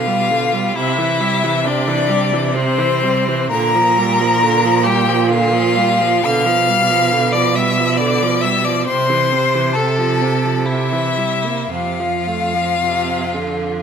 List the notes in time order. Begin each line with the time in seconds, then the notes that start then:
Already playing: B2 F4 F5
0.07 G3
0.30 D3
0.53 G3
0.75 C3 E4 E5
0.98 E3
1.20 G3
1.43 E3
1.64 C3 D4 D5
1.87 E3
2.09 G3
2.33 E3
2.54 C3 C4 C5
2.78 E3
3.03 G3
3.28 E3
3.50 A#2 D3 A#4 A#5
3.75 F3
3.98 G3
4.20 F3
4.42 D3
4.65 F3
4.84 G3 G4 G5
5.08 F3
5.28 D3 F4 F5
5.53 F3
5.76 G3
6.00 F3
6.23 B2 D3 F5 F6
6.46 F3
6.69 G3
6.90 F3
7.12 D3
7.32 F3 D5 D6
7.55 G3 E5 E6
7.78 F3
7.97 D3 D5 D6
8.22 F3
8.41 G3 E5 E6
8.64 F3 D5 D6
8.86 C3 C5 C6
9.09 E3
9.32 C3
9.55 E3
9.73 C3 A4 A5
9.99 F3
10.21 C3
10.45 F3
10.65 C3 E4 E5
10.92 E3
11.17 G3
11.44 A#3
11.69 F2 C3 F4 F5
11.99 F3
12.27 A3
12.54 F3
12.80 C3
13.34 D3